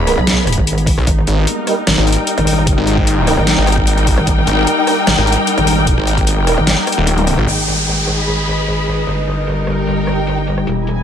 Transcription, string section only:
0.00 1.07 G#4 medium
0.00 1.07 B5 medium
1.07 8.11 D#4 medium
1.26 7.47 A#4 medium
1.98 8.11 G5 medium
7.47 9.07 G#4 medium
8.20 9.07 B5 medium
9.07 10.67 D#4 medium
9.23 10.67 A#4 medium
9.80 10.67 G5 medium
10.67 11.03 E4 medium
10.85 11.03 G#5 medium

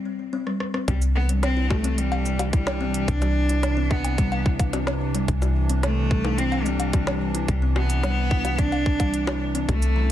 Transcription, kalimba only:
0.33 0.38 C4 loud
0.47 0.56 G3 medium
0.74 0.80 C4 medium
0.88 0.97 C4 loud
1.29 1.42 G3 medium
1.57 1.70 E4 medium
1.84 1.93 C4 loud
2.26 2.39 G3 medium
2.53 2.66 E4 medium
2.81 2.90 C4 loud
3.22 3.35 G3 medium
3.49 3.63 E4 medium
3.77 3.86 C4 loud
4.18 4.31 G3 medium
4.46 4.59 E4 medium
4.73 4.82 C4 loud
5.15 5.28 G3 medium
5.42 5.55 E4 medium
5.70 5.79 C4 loud
6.11 6.24 G3 medium
6.38 6.51 E4 medium
6.66 6.75 C4 loud
7.07 7.20 G3 medium
7.35 7.48 E4 medium
7.62 7.71 C4 loud
8.04 8.17 G3 medium
8.31 8.44 E4 medium
8.59 8.68 C4 loud
9.00 9.13 G3 medium
9.27 9.40 E4 medium
9.55 9.64 C4 loud
9.96 10.09 E3 medium

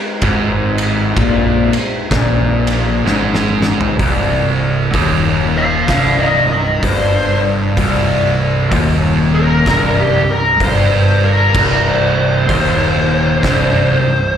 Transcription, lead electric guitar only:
5.57 5.86 C5 medium
5.57 5.87 F5 loud
5.87 6.17 C5 medium
5.87 6.19 F5 medium
6.19 6.49 A#4 medium
6.19 6.51 D#5 medium
6.52 6.81 A#4 medium
6.52 6.83 D#5 medium
6.83 7.38 C5 loud
9.35 9.96 A#4 loud
10.00 10.30 G4 medium
10.30 10.60 A#4 medium
10.64 11.23 C5 loud
11.25 11.85 A#4 medium
11.89 12.17 C5 medium
12.19 14.37 C5 medium

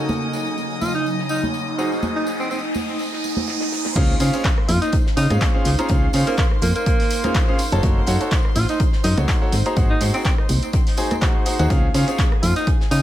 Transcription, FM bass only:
3.96 4.15 C#2 loud
4.20 4.30 C#3 medium
4.69 4.79 F2 loud
5.17 5.27 C#3 loud
5.30 5.38 G#2 medium
5.65 5.75 C#2 loud
5.90 6.08 C#2 loud
6.14 6.24 C#3 medium
6.62 6.72 F2 loud
7.72 7.80 F#1 medium
7.83 8.02 F#1 loud
8.07 8.17 F#2 medium
8.56 8.66 A1 loud
9.04 9.14 F#2 loud
9.17 9.25 C#2 medium
9.52 9.62 G#1 loud
9.77 9.95 G#1 medium
10.01 10.11 G#2 medium
10.49 10.59 C2 loud
11.59 11.67 D#2 medium
11.70 11.89 C#2 loud
11.94 12.04 C#3 medium
12.43 12.53 F2 loud
12.91 13.01 C#3 loud

